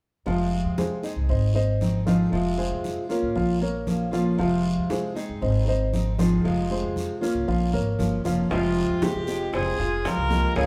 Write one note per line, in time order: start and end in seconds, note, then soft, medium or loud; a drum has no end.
0.26 0.63 F1 medium
0.26 1.02 C3 medium
0.26 1.03 F3 medium
0.26 0.69 F3 medium
0.26 1.03 G#3 medium
0.26 1.03 C4 medium
0.26 0.69 F4 medium
0.26 1.02 F4 medium
0.26 0.69 F5 medium
0.26 high conga soft
0.26 long guiro medium
0.52 high conga soft
0.65 0.90 F2 medium
0.78 1.20 G#3 medium
0.78 1.21 G#4 medium
0.78 1.21 C5 medium
0.78 high conga medium
0.78 short guiro medium
1.03 1.54 G#3 soft
1.03 1.54 C4 medium
1.03 1.54 D#4 medium
1.03 1.54 G#4 medium
1.03 high conga soft
1.03 short guiro medium
1.16 1.29 C2 medium
1.29 2.29 G#1 medium
1.29 1.51 C4 medium
1.29 1.51 C5 medium
1.29 1.51 D#5 medium
1.29 high conga soft
1.29 long guiro medium
1.55 1.97 C4 medium
1.55 1.98 C5 medium
1.55 1.98 D#5 medium
1.55 muted steel-string acoustic guitar stroke soft
1.55 high conga soft
1.80 2.06 G#3 soft
1.80 2.06 C4 soft
1.80 2.06 D#4 soft
1.80 2.05 G#4 soft
1.80 high conga medium
1.80 short guiro medium
2.06 2.49 F3 medium
2.06 2.31 G#3 soft
2.06 2.32 C4 medium
2.06 2.32 D#4 medium
2.06 2.49 F4 medium
2.06 2.32 G#4 medium
2.06 2.49 F5 medium
2.06 high conga medium
2.06 short guiro medium
2.32 2.69 F1 medium
2.32 3.08 C3 medium
2.32 3.09 F3 medium
2.32 3.09 G#3 medium
2.32 3.09 C4 medium
2.32 3.08 F4 medium
2.32 high conga soft
2.32 long guiro medium
2.58 3.00 G#3 medium
2.58 3.01 G#4 medium
2.58 3.01 C5 medium
2.58 high conga soft
2.71 2.96 F2 medium
2.84 high conga medium
2.84 short guiro medium
3.09 3.31 A#3 medium
3.09 3.60 A#3 medium
3.09 3.60 C#4 medium
3.09 3.60 F4 medium
3.09 3.31 A#4 medium
3.09 3.31 C#5 medium
3.09 high conga soft
3.09 short guiro medium
3.23 3.35 A1 medium
3.36 4.35 A#1 medium
3.36 3.57 F3 medium
3.36 3.57 F4 medium
3.36 3.57 F5 medium
3.36 high conga soft
3.36 long guiro medium
3.61 4.04 A#3 medium
3.61 4.04 A#4 medium
3.61 4.04 C#5 medium
3.61 muted steel-string acoustic guitar stroke medium
3.61 high conga soft
3.86 4.12 F3 soft
3.86 4.12 A#3 soft
3.86 4.11 C#4 soft
3.86 4.10 F4 soft
3.86 high conga medium
3.86 short guiro medium
4.11 4.34 F3 medium
4.11 4.38 A#3 soft
4.11 4.37 C#4 medium
4.11 4.37 F4 medium
4.11 4.35 F4 medium
4.11 4.35 F5 medium
4.11 high conga soft
4.11 short guiro medium
4.38 4.76 F1 medium
4.38 5.14 C3 medium
4.38 5.15 F3 medium
4.38 4.81 F3 medium
4.38 5.15 G#3 medium
4.38 5.15 C4 medium
4.38 4.81 F4 medium
4.38 5.15 F4 medium
4.38 4.82 F5 medium
4.38 high conga soft
4.38 long guiro medium
4.64 high conga soft
4.78 5.02 F2 medium
4.90 5.33 G#3 medium
4.90 5.33 G#4 medium
4.90 5.33 C5 medium
4.90 high conga medium
4.90 short guiro medium
5.15 5.66 G#3 medium
5.15 5.66 C4 medium
5.15 5.66 D#4 medium
5.15 5.66 G#4 medium
5.15 high conga soft
5.15 short guiro medium
5.29 5.41 G1 medium
5.41 6.41 G#1 medium
5.41 5.63 C4 medium
5.41 5.63 C5 medium
5.41 5.63 D#5 medium
5.41 high conga soft
5.41 long guiro medium
5.67 6.10 C4 medium
5.67 6.10 C5 medium
5.67 6.10 D#5 medium
5.67 muted steel-string acoustic guitar stroke medium
5.67 high conga soft
5.93 6.18 G#3 soft
5.93 6.18 C4 soft
5.93 6.18 D#4 soft
5.93 6.18 G#4 soft
5.93 high conga medium
5.93 short guiro medium
6.18 6.61 F3 medium
6.18 6.44 G#3 soft
6.18 6.44 C4 soft
6.18 6.44 D#4 medium
6.18 6.61 F4 medium
6.18 6.44 G#4 medium
6.18 6.62 F5 medium
6.18 high conga medium
6.18 short guiro medium
6.44 6.82 F1 medium
6.44 7.21 C3 medium
6.44 7.21 F3 medium
6.44 7.21 G#3 medium
6.44 7.21 C4 medium
6.44 7.20 F4 medium
6.44 high conga soft
6.44 long guiro medium
6.70 7.13 G#3 medium
6.70 7.13 G#4 medium
6.70 7.13 C5 medium
6.70 high conga soft
6.84 7.08 F2 medium
6.96 high conga medium
6.96 short guiro medium
7.21 7.43 A#3 medium
7.21 7.72 A#3 medium
7.21 7.72 C#4 medium
7.21 7.72 F4 medium
7.21 7.43 A#4 medium
7.21 7.43 C#5 medium
7.21 high conga soft
7.21 short guiro medium
7.35 7.47 C2 medium
7.48 7.72 A#1 medium
7.48 7.69 F3 medium
7.48 7.69 F4 medium
7.48 7.69 F5 medium
7.48 high conga soft
7.48 long guiro medium
7.73 7.97 G#1 medium
7.73 8.16 A#3 medium
7.73 8.16 A#4 medium
7.73 8.16 C#5 medium
7.73 muted steel-string acoustic guitar stroke soft
7.73 high conga soft
7.98 8.22 G1 medium
7.98 8.23 F3 soft
7.98 8.24 A#3 soft
7.98 8.24 C#4 soft
7.98 8.23 F4 soft
7.98 high conga medium
7.98 short guiro medium
8.24 8.48 F1 medium
8.24 8.46 F3 medium
8.24 8.50 A#3 soft
8.24 8.50 C#4 medium
8.24 8.49 F4 medium
8.24 8.46 F4 medium
8.24 8.47 F5 medium
8.24 short guiro medium
8.49 8.88 F1 medium
8.49 9.26 C3 medium
8.49 9.28 F3 medium
8.49 8.93 F3 medium
8.49 9.28 G#3 medium
8.49 8.99 G#3 medium
8.49 9.26 C4 medium
8.49 8.93 F4 medium
8.49 9.05 F4 medium
8.49 9.26 G4 medium
8.49 high bongo medium
8.49 high conga soft
8.49 long guiro medium
8.76 high conga soft
8.89 9.01 F1 medium
9.02 9.44 G#3 medium
9.02 9.52 C4 medium
9.02 9.54 G4 medium
9.02 high bongo medium
9.02 high conga loud
9.02 short guiro medium
9.15 9.51 F1 medium
9.27 9.78 F3 medium
9.27 9.78 G#3 medium
9.27 9.78 C4 medium
9.27 9.78 G4 medium
9.27 high conga soft
9.27 short guiro medium
9.53 9.78 F1 medium
9.53 9.75 C4 medium
9.53 10.01 C4 medium
9.53 10.08 G#4 medium
9.53 9.75 C5 medium
9.53 high bongo medium
9.53 high conga soft
9.53 long guiro medium
9.79 10.03 F1 medium
9.79 10.21 F4 medium
9.79 10.21 F5 medium
9.79 muted steel-string acoustic guitar stroke medium
9.79 high conga soft
10.05 10.29 F3 soft
10.05 10.30 G#3 soft
10.05 10.30 C4 soft
10.05 10.56 F4 medium
10.05 10.30 G4 medium
10.05 10.57 A#4 medium
10.05 high bongo medium
10.05 low bongo medium
10.05 high conga medium
10.05 short guiro medium
10.17 10.42 C2 medium
10.30 10.55 F3 medium
10.30 10.55 G#3 medium
10.30 10.66 A#3 medium
10.30 10.56 C4 medium
10.30 10.55 G4 medium
10.30 10.66 A#4 medium
10.30 high conga medium
10.30 short guiro medium
10.55 10.66 C#2 medium
10.55 10.66 C#3 medium
10.55 10.66 F3 medium
10.55 10.66 G#3 medium
10.55 10.66 C#4 medium
10.55 10.66 F4 medium
10.55 10.66 G#4 medium
10.55 10.66 A#4 medium
10.55 high bongo medium
10.55 high conga soft
10.55 long guiro medium